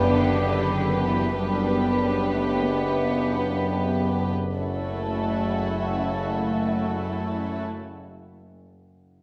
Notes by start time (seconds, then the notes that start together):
Already playing: F#1 F#2 B3 D4 G4 B4
0.09 D3
1.05 E3
1.37 F#1 F#2 G3 B3 D4 G4 B4
2.33 A3
2.65 B3
4.56 F#1 F#2 A3 C#4 E4 F#4 A4